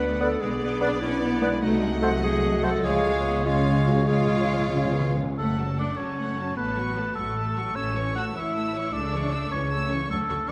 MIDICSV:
0, 0, Header, 1, 12, 480
1, 0, Start_track
1, 0, Key_signature, 3, "minor"
1, 0, Tempo, 404585
1, 485, Time_signature, 6, 3, 24, 8
1, 3854, Tempo, 426136
1, 6254, Tempo, 395517
1, 10094, Tempo, 387347
1, 12539, End_track
2, 0, Start_track
2, 0, Title_t, "Violin section"
2, 0, Program_c, 0, 48
2, 0, Note_on_c, 0, 78, 62
2, 437, Note_off_c, 0, 78, 0
2, 481, Note_on_c, 0, 74, 75
2, 1878, Note_off_c, 0, 74, 0
2, 1934, Note_on_c, 0, 78, 75
2, 3324, Note_off_c, 0, 78, 0
2, 3364, Note_on_c, 0, 77, 74
2, 4043, Note_off_c, 0, 77, 0
2, 4101, Note_on_c, 0, 77, 73
2, 4794, Note_off_c, 0, 77, 0
2, 4808, Note_on_c, 0, 77, 62
2, 5995, Note_off_c, 0, 77, 0
2, 6261, Note_on_c, 0, 78, 45
2, 6485, Note_off_c, 0, 78, 0
2, 6509, Note_on_c, 0, 81, 44
2, 6745, Note_on_c, 0, 78, 40
2, 6746, Note_off_c, 0, 81, 0
2, 6985, Note_off_c, 0, 78, 0
2, 6989, Note_on_c, 0, 81, 43
2, 7227, Note_off_c, 0, 81, 0
2, 7229, Note_on_c, 0, 78, 43
2, 7448, Note_off_c, 0, 78, 0
2, 7472, Note_on_c, 0, 81, 44
2, 7696, Note_off_c, 0, 81, 0
2, 7710, Note_on_c, 0, 81, 47
2, 7925, Note_off_c, 0, 81, 0
2, 7945, Note_on_c, 0, 85, 44
2, 8177, Note_on_c, 0, 81, 41
2, 8179, Note_off_c, 0, 85, 0
2, 8415, Note_off_c, 0, 81, 0
2, 8420, Note_on_c, 0, 85, 48
2, 8659, Note_off_c, 0, 85, 0
2, 8672, Note_on_c, 0, 81, 44
2, 8891, Note_off_c, 0, 81, 0
2, 8906, Note_on_c, 0, 85, 44
2, 9140, Note_on_c, 0, 88, 44
2, 9144, Note_off_c, 0, 85, 0
2, 9362, Note_off_c, 0, 88, 0
2, 9391, Note_on_c, 0, 85, 44
2, 9624, Note_off_c, 0, 85, 0
2, 9628, Note_on_c, 0, 88, 46
2, 9862, Note_off_c, 0, 88, 0
2, 9882, Note_on_c, 0, 85, 44
2, 10108, Note_off_c, 0, 85, 0
2, 10110, Note_on_c, 0, 88, 43
2, 10328, Note_off_c, 0, 88, 0
2, 10353, Note_on_c, 0, 85, 45
2, 10586, Note_off_c, 0, 85, 0
2, 10586, Note_on_c, 0, 88, 46
2, 10805, Note_off_c, 0, 88, 0
2, 10823, Note_on_c, 0, 85, 49
2, 11055, Note_on_c, 0, 88, 46
2, 11060, Note_off_c, 0, 85, 0
2, 11288, Note_on_c, 0, 85, 49
2, 11295, Note_off_c, 0, 88, 0
2, 11528, Note_on_c, 0, 88, 47
2, 11533, Note_off_c, 0, 85, 0
2, 11758, Note_off_c, 0, 88, 0
2, 11778, Note_on_c, 0, 85, 47
2, 11999, Note_off_c, 0, 85, 0
2, 12014, Note_on_c, 0, 85, 53
2, 12111, Note_off_c, 0, 85, 0
2, 12260, Note_on_c, 0, 85, 47
2, 12355, Note_off_c, 0, 85, 0
2, 12493, Note_on_c, 0, 85, 46
2, 12539, Note_off_c, 0, 85, 0
2, 12539, End_track
3, 0, Start_track
3, 0, Title_t, "Flute"
3, 0, Program_c, 1, 73
3, 244, Note_on_c, 1, 74, 71
3, 356, Note_off_c, 1, 74, 0
3, 959, Note_on_c, 1, 74, 78
3, 1072, Note_off_c, 1, 74, 0
3, 1688, Note_on_c, 1, 74, 74
3, 1800, Note_off_c, 1, 74, 0
3, 2408, Note_on_c, 1, 78, 81
3, 2518, Note_off_c, 1, 78, 0
3, 3131, Note_on_c, 1, 78, 74
3, 3241, Note_off_c, 1, 78, 0
3, 3375, Note_on_c, 1, 77, 69
3, 4048, Note_off_c, 1, 77, 0
3, 4093, Note_on_c, 1, 77, 66
3, 4790, Note_off_c, 1, 77, 0
3, 4805, Note_on_c, 1, 77, 57
3, 5994, Note_off_c, 1, 77, 0
3, 12539, End_track
4, 0, Start_track
4, 0, Title_t, "Oboe"
4, 0, Program_c, 2, 68
4, 254, Note_on_c, 2, 71, 71
4, 335, Note_off_c, 2, 71, 0
4, 972, Note_on_c, 2, 71, 75
4, 1052, Note_off_c, 2, 71, 0
4, 1700, Note_on_c, 2, 71, 75
4, 1779, Note_off_c, 2, 71, 0
4, 2402, Note_on_c, 2, 72, 79
4, 2486, Note_off_c, 2, 72, 0
4, 3125, Note_on_c, 2, 72, 73
4, 3210, Note_off_c, 2, 72, 0
4, 3375, Note_on_c, 2, 73, 72
4, 4047, Note_off_c, 2, 73, 0
4, 4094, Note_on_c, 2, 73, 66
4, 4787, Note_off_c, 2, 73, 0
4, 4794, Note_on_c, 2, 73, 66
4, 5988, Note_off_c, 2, 73, 0
4, 6256, Note_on_c, 2, 69, 64
4, 6708, Note_off_c, 2, 69, 0
4, 6752, Note_on_c, 2, 74, 68
4, 6970, Note_on_c, 2, 73, 61
4, 6988, Note_off_c, 2, 74, 0
4, 7687, Note_off_c, 2, 73, 0
4, 7694, Note_on_c, 2, 71, 69
4, 8398, Note_off_c, 2, 71, 0
4, 8405, Note_on_c, 2, 69, 66
4, 9136, Note_on_c, 2, 73, 72
4, 9154, Note_off_c, 2, 69, 0
4, 9615, Note_off_c, 2, 73, 0
4, 9624, Note_on_c, 2, 78, 71
4, 9730, Note_off_c, 2, 78, 0
4, 9868, Note_on_c, 2, 76, 65
4, 10573, Note_on_c, 2, 74, 79
4, 10592, Note_off_c, 2, 76, 0
4, 11289, Note_off_c, 2, 74, 0
4, 11296, Note_on_c, 2, 73, 75
4, 12006, Note_off_c, 2, 73, 0
4, 12027, Note_on_c, 2, 69, 72
4, 12521, Note_off_c, 2, 69, 0
4, 12539, End_track
5, 0, Start_track
5, 0, Title_t, "Violin section"
5, 0, Program_c, 3, 48
5, 0, Note_on_c, 3, 74, 61
5, 438, Note_off_c, 3, 74, 0
5, 476, Note_on_c, 3, 74, 78
5, 1876, Note_off_c, 3, 74, 0
5, 1930, Note_on_c, 3, 75, 81
5, 3321, Note_off_c, 3, 75, 0
5, 3361, Note_on_c, 3, 73, 76
5, 4041, Note_off_c, 3, 73, 0
5, 4080, Note_on_c, 3, 73, 59
5, 4783, Note_off_c, 3, 73, 0
5, 4807, Note_on_c, 3, 73, 67
5, 5995, Note_off_c, 3, 73, 0
5, 6255, Note_on_c, 3, 69, 45
5, 6482, Note_off_c, 3, 69, 0
5, 6488, Note_on_c, 3, 66, 42
5, 6734, Note_on_c, 3, 69, 41
5, 6736, Note_off_c, 3, 66, 0
5, 6980, Note_off_c, 3, 69, 0
5, 6994, Note_on_c, 3, 66, 42
5, 7230, Note_off_c, 3, 66, 0
5, 7238, Note_on_c, 3, 69, 40
5, 7453, Note_off_c, 3, 69, 0
5, 7459, Note_on_c, 3, 66, 39
5, 7697, Note_off_c, 3, 66, 0
5, 7716, Note_on_c, 3, 69, 45
5, 7929, Note_off_c, 3, 69, 0
5, 7930, Note_on_c, 3, 66, 44
5, 8171, Note_off_c, 3, 66, 0
5, 8190, Note_on_c, 3, 69, 41
5, 8422, Note_off_c, 3, 69, 0
5, 8424, Note_on_c, 3, 66, 43
5, 8661, Note_off_c, 3, 66, 0
5, 8667, Note_on_c, 3, 69, 40
5, 8888, Note_off_c, 3, 69, 0
5, 8907, Note_on_c, 3, 66, 41
5, 9144, Note_off_c, 3, 66, 0
5, 9144, Note_on_c, 3, 69, 51
5, 9364, Note_off_c, 3, 69, 0
5, 9390, Note_on_c, 3, 73, 45
5, 9623, Note_off_c, 3, 73, 0
5, 9637, Note_on_c, 3, 69, 46
5, 9865, Note_on_c, 3, 73, 43
5, 9867, Note_off_c, 3, 69, 0
5, 10098, Note_on_c, 3, 69, 43
5, 10099, Note_off_c, 3, 73, 0
5, 10322, Note_off_c, 3, 69, 0
5, 10337, Note_on_c, 3, 73, 44
5, 10570, Note_on_c, 3, 69, 50
5, 10578, Note_off_c, 3, 73, 0
5, 10797, Note_off_c, 3, 69, 0
5, 10816, Note_on_c, 3, 73, 45
5, 11056, Note_off_c, 3, 73, 0
5, 11061, Note_on_c, 3, 69, 43
5, 11293, Note_on_c, 3, 73, 45
5, 11298, Note_off_c, 3, 69, 0
5, 11532, Note_on_c, 3, 69, 46
5, 11535, Note_off_c, 3, 73, 0
5, 11760, Note_off_c, 3, 69, 0
5, 11772, Note_on_c, 3, 73, 42
5, 12016, Note_off_c, 3, 73, 0
5, 12017, Note_on_c, 3, 69, 53
5, 12113, Note_off_c, 3, 69, 0
5, 12258, Note_on_c, 3, 69, 46
5, 12353, Note_off_c, 3, 69, 0
5, 12501, Note_on_c, 3, 69, 47
5, 12539, Note_off_c, 3, 69, 0
5, 12539, End_track
6, 0, Start_track
6, 0, Title_t, "Clarinet"
6, 0, Program_c, 4, 71
6, 0, Note_on_c, 4, 71, 97
6, 233, Note_off_c, 4, 71, 0
6, 265, Note_on_c, 4, 69, 100
6, 482, Note_on_c, 4, 68, 91
6, 500, Note_off_c, 4, 69, 0
6, 1192, Note_on_c, 4, 64, 109
6, 1210, Note_off_c, 4, 68, 0
6, 1933, Note_on_c, 4, 63, 90
6, 1951, Note_off_c, 4, 64, 0
6, 2396, Note_off_c, 4, 63, 0
6, 2655, Note_on_c, 4, 68, 109
6, 3131, Note_on_c, 4, 69, 108
6, 3149, Note_off_c, 4, 68, 0
6, 3376, Note_on_c, 4, 68, 104
6, 3394, Note_off_c, 4, 69, 0
6, 4089, Note_on_c, 4, 65, 94
6, 4105, Note_off_c, 4, 68, 0
6, 4560, Note_on_c, 4, 66, 90
6, 4577, Note_off_c, 4, 65, 0
6, 4785, Note_on_c, 4, 68, 89
6, 4802, Note_off_c, 4, 66, 0
6, 6008, Note_off_c, 4, 68, 0
6, 12539, End_track
7, 0, Start_track
7, 0, Title_t, "French horn section"
7, 0, Program_c, 5, 60
7, 0, Note_on_c, 5, 59, 57
7, 0, Note_on_c, 5, 62, 66
7, 472, Note_off_c, 5, 59, 0
7, 478, Note_off_c, 5, 62, 0
7, 486, Note_on_c, 5, 59, 74
7, 496, Note_on_c, 5, 62, 71
7, 1899, Note_off_c, 5, 59, 0
7, 1904, Note_off_c, 5, 62, 0
7, 1917, Note_on_c, 5, 57, 72
7, 1924, Note_on_c, 5, 66, 76
7, 3351, Note_on_c, 5, 56, 76
7, 3354, Note_on_c, 5, 65, 77
7, 3362, Note_off_c, 5, 57, 0
7, 3366, Note_off_c, 5, 66, 0
7, 5321, Note_off_c, 5, 56, 0
7, 5321, Note_off_c, 5, 65, 0
7, 5513, Note_on_c, 5, 61, 76
7, 5743, Note_on_c, 5, 59, 67
7, 5746, Note_off_c, 5, 61, 0
7, 6003, Note_off_c, 5, 59, 0
7, 6012, Note_on_c, 5, 61, 61
7, 6251, Note_off_c, 5, 61, 0
7, 12539, End_track
8, 0, Start_track
8, 0, Title_t, "Cello section"
8, 0, Program_c, 6, 48
8, 0, Note_on_c, 6, 57, 70
8, 468, Note_off_c, 6, 57, 0
8, 495, Note_on_c, 6, 56, 82
8, 588, Note_off_c, 6, 56, 0
8, 731, Note_on_c, 6, 59, 79
8, 962, Note_off_c, 6, 59, 0
8, 975, Note_on_c, 6, 62, 78
8, 1069, Note_off_c, 6, 62, 0
8, 1215, Note_on_c, 6, 61, 81
8, 1446, Note_off_c, 6, 61, 0
8, 1455, Note_on_c, 6, 59, 82
8, 1687, Note_off_c, 6, 59, 0
8, 1695, Note_on_c, 6, 56, 75
8, 1930, Note_on_c, 6, 57, 88
8, 1932, Note_off_c, 6, 56, 0
8, 2163, Note_off_c, 6, 57, 0
8, 2171, Note_on_c, 6, 56, 78
8, 2407, Note_off_c, 6, 56, 0
8, 2408, Note_on_c, 6, 54, 79
8, 3350, Note_off_c, 6, 54, 0
8, 3361, Note_on_c, 6, 53, 82
8, 3606, Note_off_c, 6, 53, 0
8, 3616, Note_on_c, 6, 56, 70
8, 3853, Note_off_c, 6, 56, 0
8, 3855, Note_on_c, 6, 59, 72
8, 4085, Note_off_c, 6, 59, 0
8, 4092, Note_on_c, 6, 61, 63
8, 4804, Note_off_c, 6, 61, 0
8, 4807, Note_on_c, 6, 65, 74
8, 5874, Note_off_c, 6, 65, 0
8, 6265, Note_on_c, 6, 57, 55
8, 6713, Note_off_c, 6, 57, 0
8, 6745, Note_on_c, 6, 62, 53
8, 6980, Note_off_c, 6, 62, 0
8, 6995, Note_on_c, 6, 61, 52
8, 7690, Note_off_c, 6, 61, 0
8, 7703, Note_on_c, 6, 59, 58
8, 8409, Note_on_c, 6, 57, 57
8, 8416, Note_off_c, 6, 59, 0
8, 9123, Note_off_c, 6, 57, 0
8, 9147, Note_on_c, 6, 61, 58
8, 9621, Note_off_c, 6, 61, 0
8, 9628, Note_on_c, 6, 66, 62
8, 9722, Note_off_c, 6, 66, 0
8, 9867, Note_on_c, 6, 64, 57
8, 10569, Note_off_c, 6, 64, 0
8, 10584, Note_on_c, 6, 62, 70
8, 11299, Note_off_c, 6, 62, 0
8, 11307, Note_on_c, 6, 61, 63
8, 12026, Note_off_c, 6, 61, 0
8, 12032, Note_on_c, 6, 57, 62
8, 12493, Note_off_c, 6, 57, 0
8, 12499, Note_on_c, 6, 62, 59
8, 12539, Note_off_c, 6, 62, 0
8, 12539, End_track
9, 0, Start_track
9, 0, Title_t, "Bassoon"
9, 0, Program_c, 7, 70
9, 244, Note_on_c, 7, 59, 75
9, 328, Note_off_c, 7, 59, 0
9, 956, Note_on_c, 7, 59, 75
9, 1042, Note_off_c, 7, 59, 0
9, 1680, Note_on_c, 7, 59, 80
9, 1766, Note_off_c, 7, 59, 0
9, 2396, Note_on_c, 7, 57, 79
9, 2482, Note_off_c, 7, 57, 0
9, 3120, Note_on_c, 7, 57, 75
9, 3207, Note_off_c, 7, 57, 0
9, 3366, Note_on_c, 7, 56, 75
9, 4043, Note_off_c, 7, 56, 0
9, 4083, Note_on_c, 7, 56, 70
9, 4785, Note_off_c, 7, 56, 0
9, 4798, Note_on_c, 7, 56, 66
9, 5990, Note_off_c, 7, 56, 0
9, 12539, End_track
10, 0, Start_track
10, 0, Title_t, "Viola section"
10, 0, Program_c, 8, 48
10, 0, Note_on_c, 8, 59, 63
10, 437, Note_off_c, 8, 59, 0
10, 477, Note_on_c, 8, 59, 78
10, 1876, Note_off_c, 8, 59, 0
10, 1929, Note_on_c, 8, 57, 80
10, 3321, Note_off_c, 8, 57, 0
10, 3370, Note_on_c, 8, 56, 82
10, 4045, Note_off_c, 8, 56, 0
10, 4081, Note_on_c, 8, 56, 65
10, 4784, Note_off_c, 8, 56, 0
10, 4813, Note_on_c, 8, 56, 69
10, 5998, Note_off_c, 8, 56, 0
10, 6268, Note_on_c, 8, 57, 47
10, 6489, Note_off_c, 8, 57, 0
10, 6511, Note_on_c, 8, 54, 43
10, 6747, Note_off_c, 8, 54, 0
10, 6751, Note_on_c, 8, 57, 44
10, 6988, Note_off_c, 8, 57, 0
10, 6996, Note_on_c, 8, 54, 41
10, 7230, Note_on_c, 8, 57, 39
10, 7231, Note_off_c, 8, 54, 0
10, 7448, Note_off_c, 8, 57, 0
10, 7463, Note_on_c, 8, 54, 43
10, 7697, Note_on_c, 8, 57, 50
10, 7699, Note_off_c, 8, 54, 0
10, 7918, Note_off_c, 8, 57, 0
10, 7936, Note_on_c, 8, 54, 43
10, 8175, Note_off_c, 8, 54, 0
10, 8183, Note_on_c, 8, 57, 45
10, 8418, Note_off_c, 8, 57, 0
10, 8418, Note_on_c, 8, 54, 41
10, 8658, Note_off_c, 8, 54, 0
10, 8668, Note_on_c, 8, 57, 41
10, 8889, Note_off_c, 8, 57, 0
10, 8902, Note_on_c, 8, 54, 41
10, 9141, Note_on_c, 8, 57, 51
10, 9142, Note_off_c, 8, 54, 0
10, 9363, Note_off_c, 8, 57, 0
10, 9374, Note_on_c, 8, 52, 44
10, 9614, Note_on_c, 8, 57, 44
10, 9615, Note_off_c, 8, 52, 0
10, 9854, Note_on_c, 8, 52, 47
10, 9855, Note_off_c, 8, 57, 0
10, 10094, Note_off_c, 8, 52, 0
10, 10096, Note_on_c, 8, 57, 44
10, 10321, Note_off_c, 8, 57, 0
10, 10343, Note_on_c, 8, 52, 46
10, 10581, Note_off_c, 8, 52, 0
10, 10590, Note_on_c, 8, 57, 52
10, 10808, Note_off_c, 8, 57, 0
10, 10825, Note_on_c, 8, 52, 45
10, 11061, Note_off_c, 8, 52, 0
10, 11065, Note_on_c, 8, 57, 45
10, 11300, Note_off_c, 8, 57, 0
10, 11307, Note_on_c, 8, 52, 47
10, 11543, Note_off_c, 8, 52, 0
10, 11558, Note_on_c, 8, 57, 46
10, 11774, Note_off_c, 8, 57, 0
10, 11788, Note_on_c, 8, 52, 44
10, 12022, Note_on_c, 8, 54, 55
10, 12024, Note_off_c, 8, 52, 0
10, 12117, Note_off_c, 8, 54, 0
10, 12260, Note_on_c, 8, 54, 47
10, 12354, Note_off_c, 8, 54, 0
10, 12539, End_track
11, 0, Start_track
11, 0, Title_t, "Timpani"
11, 0, Program_c, 10, 47
11, 3365, Note_on_c, 10, 49, 36
11, 3451, Note_off_c, 10, 49, 0
11, 3466, Note_on_c, 10, 49, 37
11, 3548, Note_off_c, 10, 49, 0
11, 3560, Note_on_c, 10, 49, 37
11, 3632, Note_off_c, 10, 49, 0
11, 3646, Note_on_c, 10, 49, 37
11, 3730, Note_off_c, 10, 49, 0
11, 3743, Note_on_c, 10, 49, 40
11, 3815, Note_off_c, 10, 49, 0
11, 3829, Note_on_c, 10, 49, 39
11, 3910, Note_off_c, 10, 49, 0
11, 3924, Note_on_c, 10, 49, 42
11, 3995, Note_off_c, 10, 49, 0
11, 4008, Note_on_c, 10, 49, 43
11, 4091, Note_off_c, 10, 49, 0
11, 4106, Note_on_c, 10, 49, 41
11, 4173, Note_off_c, 10, 49, 0
11, 4186, Note_on_c, 10, 49, 45
11, 4264, Note_off_c, 10, 49, 0
11, 4278, Note_on_c, 10, 49, 46
11, 4360, Note_off_c, 10, 49, 0
11, 4375, Note_on_c, 10, 49, 51
11, 4449, Note_off_c, 10, 49, 0
11, 4463, Note_on_c, 10, 49, 51
11, 4538, Note_off_c, 10, 49, 0
11, 4551, Note_on_c, 10, 49, 53
11, 4632, Note_off_c, 10, 49, 0
11, 4737, Note_on_c, 10, 49, 54
11, 4805, Note_off_c, 10, 49, 0
11, 4819, Note_on_c, 10, 49, 59
11, 4900, Note_off_c, 10, 49, 0
11, 4914, Note_on_c, 10, 49, 64
11, 4987, Note_off_c, 10, 49, 0
11, 5000, Note_on_c, 10, 49, 65
11, 5084, Note_off_c, 10, 49, 0
11, 5098, Note_on_c, 10, 49, 67
11, 5168, Note_off_c, 10, 49, 0
11, 5181, Note_on_c, 10, 49, 71
11, 5262, Note_off_c, 10, 49, 0
11, 5275, Note_on_c, 10, 49, 73
11, 5357, Note_off_c, 10, 49, 0
11, 5370, Note_on_c, 10, 49, 73
11, 5453, Note_off_c, 10, 49, 0
11, 5465, Note_on_c, 10, 49, 81
11, 5547, Note_off_c, 10, 49, 0
11, 5560, Note_on_c, 10, 49, 75
11, 5640, Note_off_c, 10, 49, 0
11, 5653, Note_on_c, 10, 49, 76
11, 5718, Note_off_c, 10, 49, 0
11, 5732, Note_on_c, 10, 49, 79
11, 5816, Note_off_c, 10, 49, 0
11, 5830, Note_on_c, 10, 49, 92
11, 5915, Note_off_c, 10, 49, 0
11, 5927, Note_on_c, 10, 49, 87
11, 6000, Note_off_c, 10, 49, 0
11, 6013, Note_on_c, 10, 49, 97
11, 6078, Note_off_c, 10, 49, 0
11, 6091, Note_on_c, 10, 49, 99
11, 6181, Note_off_c, 10, 49, 0
11, 12539, End_track
12, 0, Start_track
12, 0, Title_t, "Double bass section"
12, 0, Program_c, 11, 48
12, 0, Note_on_c, 11, 38, 74
12, 460, Note_off_c, 11, 38, 0
12, 489, Note_on_c, 11, 35, 75
12, 1901, Note_off_c, 11, 35, 0
12, 1935, Note_on_c, 11, 36, 83
12, 3368, Note_on_c, 11, 37, 81
12, 3372, Note_off_c, 11, 36, 0
12, 5972, Note_off_c, 11, 37, 0
12, 6254, Note_on_c, 11, 30, 58
12, 6897, Note_off_c, 11, 30, 0
12, 6976, Note_on_c, 11, 30, 51
12, 7610, Note_off_c, 11, 30, 0
12, 7706, Note_on_c, 11, 33, 58
12, 8333, Note_off_c, 11, 33, 0
12, 8413, Note_on_c, 11, 33, 57
12, 9055, Note_off_c, 11, 33, 0
12, 9144, Note_on_c, 11, 33, 61
12, 9774, Note_off_c, 11, 33, 0
12, 9861, Note_on_c, 11, 33, 56
12, 10495, Note_off_c, 11, 33, 0
12, 10588, Note_on_c, 11, 37, 64
12, 11216, Note_off_c, 11, 37, 0
12, 11305, Note_on_c, 11, 37, 58
12, 11940, Note_off_c, 11, 37, 0
12, 12022, Note_on_c, 11, 38, 60
12, 12117, Note_off_c, 11, 38, 0
12, 12258, Note_on_c, 11, 38, 55
12, 12353, Note_off_c, 11, 38, 0
12, 12494, Note_on_c, 11, 38, 55
12, 12539, Note_off_c, 11, 38, 0
12, 12539, End_track
0, 0, End_of_file